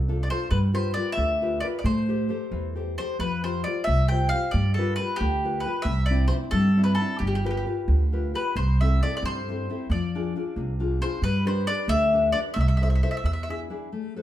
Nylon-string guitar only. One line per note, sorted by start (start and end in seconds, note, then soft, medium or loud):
0.00 0.29 C3 medium
0.08 0.29 D4 soft
0.08 0.29 F4 soft
0.08 0.29 A4 medium
0.30 0.47 D4 soft
0.30 0.47 F4 soft
0.30 0.47 A4 soft
0.51 0.73 G3 soft
0.73 0.95 F4 soft
0.73 0.96 G4 soft
0.73 0.96 B4 medium
0.96 1.32 F4 soft
0.96 1.33 G4 soft
0.96 1.33 B4 medium
1.18 1.61 D3 medium
1.42 1.62 F4 soft
1.42 1.62 G4 soft
1.42 1.63 B4 soft
1.63 1.80 F4 soft
1.63 1.80 G4 soft
1.63 1.80 B4 soft
1.85 2.29 A3 medium
2.09 2.28 G4 medium
2.09 2.28 A4 soft
2.09 2.29 C5 medium
2.29 2.66 G4 soft
2.29 2.67 A4 soft
2.29 2.67 C5 medium
2.52 2.97 E3 medium
2.75 2.97 G4 soft
2.75 2.97 A4 soft
2.75 2.98 C5 soft
2.98 3.15 G4 soft
2.98 3.16 A4 soft
2.98 3.16 C5 soft
3.20 3.64 F3 soft
3.43 3.65 F4 soft
3.43 3.66 G4 soft
3.43 3.66 C5 medium
3.66 4.03 F4 soft
3.66 4.03 G4 soft
3.66 4.03 C5 soft
3.88 4.32 C3 medium
4.11 4.32 F4 soft
4.11 4.32 G4 soft
4.11 4.33 C5 soft
4.33 4.50 F4 soft
4.33 4.50 G4 soft
4.33 4.50 C5 soft
4.54 4.77 G3 medium
4.78 4.98 F4 soft
4.78 4.99 G4 soft
4.78 4.99 B4 medium
4.99 5.35 F4 soft
4.99 5.36 G4 soft
4.99 5.36 B4 soft
5.21 5.64 D3 medium
5.44 5.64 F4 soft
5.44 5.65 G4 soft
5.44 5.65 B4 medium
5.66 5.82 F4 soft
5.66 5.83 G4 soft
5.66 5.83 B4 soft
5.86 6.30 C3 medium
6.10 6.30 C4 medium
6.10 6.30 D4 soft
6.10 6.31 E4 medium
6.31 6.68 C4 soft
6.31 6.68 D4 soft
6.31 6.68 E4 soft
6.54 6.98 G3 medium
6.77 6.98 C4 soft
6.77 6.99 D4 soft
6.77 6.99 E4 soft
6.99 7.16 C4 soft
6.99 7.17 D4 soft
6.99 7.17 E4 soft
7.21 7.44 G3 soft
7.44 7.65 F4 soft
7.44 7.66 G4 soft
7.44 7.66 B4 medium
7.66 8.03 F4 soft
7.66 8.04 G4 soft
7.66 8.04 B4 soft
7.88 8.33 D3 soft
8.13 8.33 F4 soft
8.13 8.33 G4 soft
8.13 8.33 B4 soft
8.34 8.51 F4 soft
8.34 8.52 G4 soft
8.34 8.52 B4 soft
8.56 9.01 C3 soft
8.81 9.01 C4 soft
8.81 9.02 E4 soft
8.81 9.02 A4 medium
9.03 9.39 C4 soft
9.03 9.39 E4 soft
9.03 9.40 A4 soft
9.24 9.68 G3 medium
9.49 9.69 C4 soft
9.49 9.69 E4 soft
9.49 9.69 A4 soft
9.70 9.87 C4 soft
9.70 9.87 E4 soft
9.70 9.87 A4 soft
9.92 10.35 F3 medium
10.15 10.35 D4 medium
10.15 10.35 F4 soft
10.15 10.36 G#4 medium
10.36 10.72 D4 soft
10.36 10.73 F4 soft
10.36 10.73 G#4 soft
10.57 11.01 C3 soft
10.80 11.00 D4 soft
10.80 11.00 F4 soft
10.80 11.01 G#4 soft
11.01 11.19 D4 soft
11.01 11.19 F4 soft
11.01 11.19 G#4 soft
11.22 11.67 G3 medium
11.46 11.66 D4 medium
11.46 11.66 G4 soft
11.46 11.67 B4 medium
11.67 12.04 D4 soft
11.67 12.04 G4 soft
11.67 12.04 B4 soft
11.89 12.33 D3 medium
12.14 12.34 D4 soft
12.14 12.34 G4 soft
12.14 12.34 B4 soft
12.35 12.52 D4 soft
12.35 12.52 G4 soft
12.35 12.53 B4 medium
12.56 13.01 C3 medium
12.81 13.02 E4 medium
12.81 13.02 A4 soft
12.81 13.03 C5 medium
13.03 13.20 E4 soft
13.03 13.20 A4 soft
13.03 13.21 C5 medium
13.25 13.69 E3 soft
13.49 13.69 D4 soft
13.49 13.69 E4 soft
13.49 13.70 G#4 soft
13.70 13.88 D4 soft
13.70 13.88 E4 soft
13.70 13.88 G#4 soft
13.92 14.16 A3 medium
14.16 14.22 A4 soft
14.16 14.22 B4 soft
14.16 14.22 C5 medium